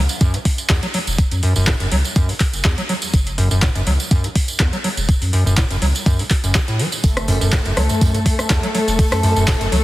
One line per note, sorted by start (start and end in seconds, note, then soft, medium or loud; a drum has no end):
0.09 closed hi-hat soft
0.09 tambourine medium
0.21 0.36 F#2 loud
0.21 kick loud
0.21 closed hi-hat medium
0.21 tambourine medium
0.34 0.38 A2 medium
0.34 closed hi-hat medium
0.34 tambourine soft
0.45 kick medium
0.45 open hi-hat loud
0.58 closed hi-hat soft
0.58 tambourine medium
0.69 0.81 E2 medium
0.69 kick loud
0.69 clap loud
0.69 closed hi-hat medium
0.69 tambourine medium
0.83 0.87 F#3 medium
0.83 closed hi-hat medium
0.83 tambourine soft
0.94 0.98 F#3 medium
0.94 open hi-hat loud
1.07 1.27 E1 medium
1.07 closed hi-hat soft
1.07 tambourine medium
1.18 kick loud
1.18 closed hi-hat medium
1.18 tambourine medium
1.31 1.41 F#2 medium
1.31 closed hi-hat medium
1.31 tambourine soft
1.43 1.54 F#2 loud
1.43 open hi-hat loud
1.56 1.76 E1 medium
1.56 1.65 F#2 loud
1.56 tambourine medium
1.67 kick loud
1.67 clap loud
1.67 closed hi-hat medium
1.80 1.90 F#1 medium
1.80 1.87 F#2 medium
1.80 closed hi-hat medium
1.80 tambourine soft
1.92 2.02 C#2 loud
1.92 1.96 F#3 medium
1.92 open hi-hat loud
2.05 closed hi-hat soft
2.05 tambourine medium
2.16 2.31 F#2 loud
2.16 kick loud
2.16 closed hi-hat medium
2.16 tambourine medium
2.29 2.33 A2 medium
2.29 open hi-hat medium
2.29 tambourine soft
2.40 kick medium
2.40 clap medium
2.40 open hi-hat loud
2.53 2.63 F#1 medium
2.53 closed hi-hat soft
2.53 tambourine medium
2.64 2.76 E2 medium
2.64 kick loud
2.64 clap loud
2.64 closed hi-hat medium
2.78 2.82 F#3 medium
2.78 closed hi-hat soft
2.78 tambourine soft
2.89 2.94 F#3 medium
2.89 open hi-hat loud
3.02 closed hi-hat soft
3.02 tambourine medium
3.14 3.47 F#1 loud
3.14 kick loud
3.14 closed hi-hat medium
3.14 tambourine medium
3.27 closed hi-hat medium
3.27 tambourine soft
3.38 3.49 F#2 loud
3.38 open hi-hat loud
3.51 3.71 E1 medium
3.51 3.60 F#2 loud
3.51 tambourine medium
3.62 3.70 A2 medium
3.62 kick loud
3.62 clap loud
3.62 closed hi-hat medium
3.75 3.85 F#1 medium
3.75 3.82 F#2 medium
3.75 closed hi-hat medium
3.75 tambourine soft
3.87 3.97 C#2 loud
3.87 3.91 F#3 medium
3.87 open hi-hat loud
4.00 closed hi-hat soft
4.00 tambourine medium
4.11 4.26 F#2 loud
4.11 kick loud
4.11 closed hi-hat medium
4.11 tambourine medium
4.24 4.28 A2 medium
4.24 closed hi-hat medium
4.24 tambourine soft
4.36 kick medium
4.36 open hi-hat loud
4.48 closed hi-hat soft
4.48 tambourine medium
4.59 4.71 E2 medium
4.59 kick loud
4.59 clap loud
4.59 closed hi-hat medium
4.73 4.77 F#3 medium
4.73 closed hi-hat soft
4.73 tambourine soft
4.84 4.89 F#3 medium
4.84 open hi-hat loud
4.97 5.17 E1 medium
4.97 closed hi-hat soft
4.97 tambourine medium
5.09 kick loud
5.09 closed hi-hat medium
5.09 tambourine medium
5.22 5.31 F#2 medium
5.22 open hi-hat medium
5.22 tambourine soft
5.33 5.44 F#2 loud
5.33 open hi-hat loud
5.46 5.66 E1 medium
5.46 5.55 F#2 loud
5.46 tambourine medium
5.57 5.65 A2 medium
5.57 kick loud
5.57 clap loud
5.57 closed hi-hat medium
5.57 tambourine medium
5.70 5.80 F#1 medium
5.70 5.77 F#2 medium
5.70 closed hi-hat soft
5.70 tambourine soft
5.82 5.93 C#2 medium
5.82 5.86 F#3 medium
5.82 open hi-hat loud
5.95 closed hi-hat soft
5.95 tambourine medium
6.06 6.21 F#2 loud
6.06 kick loud
6.06 closed hi-hat medium
6.06 tambourine medium
6.19 6.23 A2 medium
6.19 open hi-hat medium
6.19 tambourine soft
6.30 kick medium
6.30 clap medium
6.30 open hi-hat loud
6.44 6.53 F#1 medium
6.44 6.57 F#2 medium
6.44 closed hi-hat soft
6.44 tambourine medium
6.55 6.59 F#3 medium
6.55 kick loud
6.55 clap loud
6.55 closed hi-hat medium
6.55 tambourine medium
6.68 6.81 A2 medium
6.68 closed hi-hat soft
6.68 tambourine soft
6.79 6.87 F#3 medium
6.79 open hi-hat loud
6.92 closed hi-hat soft
6.92 tambourine medium
7.03 7.37 F#1 loud
7.03 9.84 A3 medium
7.03 9.84 A4 medium
7.03 kick loud
7.03 closed hi-hat medium
7.03 tambourine medium
7.17 cross-stick medium
7.17 closed hi-hat soft
7.17 tambourine soft
7.28 7.39 F#2 loud
7.28 mid tom medium
7.28 open hi-hat loud
7.28 tambourine medium
7.41 7.61 E1 medium
7.41 7.51 F#2 loud
7.41 tambourine medium
7.52 7.60 A2 medium
7.52 kick loud
7.52 snare loud
7.52 clap loud
7.52 closed hi-hat medium
7.52 tambourine medium
7.65 7.75 F#1 medium
7.65 7.72 F#2 medium
7.65 closed hi-hat soft
7.65 tambourine soft
7.77 7.88 C#2 loud
7.77 7.81 F#3 medium
7.77 cross-stick medium
7.77 open hi-hat loud
7.77 tambourine medium
7.89 closed hi-hat soft
7.89 mid tom medium
7.89 tambourine medium
8.01 8.16 F#2 loud
8.01 kick loud
8.01 closed hi-hat medium
8.01 tambourine medium
8.14 8.18 A2 medium
8.14 closed hi-hat medium
8.14 closed hi-hat soft
8.14 mid tom loud
8.14 tambourine soft
8.26 kick medium
8.26 open hi-hat loud
8.26 tambourine medium
8.39 cross-stick medium
8.39 closed hi-hat soft
8.39 tambourine medium
8.50 8.61 E2 medium
8.50 kick loud
8.50 snare loud
8.50 clap loud
8.50 closed hi-hat medium
8.50 tambourine medium
8.63 8.67 F#3 medium
8.63 closed hi-hat soft
8.63 tambourine soft
8.75 8.79 F#3 medium
8.75 open hi-hat loud
8.75 tambourine medium
8.87 9.07 E1 loud
8.87 snare soft
8.87 closed hi-hat soft
8.87 tambourine medium
8.99 kick loud
8.99 closed hi-hat medium
8.99 open hi-hat medium
8.99 tambourine medium
9.11 9.21 F#2 medium
9.11 cross-stick medium
9.11 snare medium
9.11 closed hi-hat medium
9.11 tambourine soft
9.23 9.34 F#2 loud
9.23 mid tom medium
9.23 open hi-hat loud
9.23 tambourine medium
9.36 9.56 E1 medium
9.36 9.46 F#2 loud
9.36 tambourine medium
9.47 9.55 A2 medium
9.47 kick loud
9.47 snare loud
9.47 clap loud
9.47 closed hi-hat medium
9.47 tambourine loud
9.61 9.70 F#1 medium
9.61 9.67 F#2 medium
9.61 closed hi-hat medium
9.61 tambourine soft
9.72 9.83 C#2 medium
9.72 9.76 F#3 medium
9.72 open hi-hat loud
9.72 tambourine medium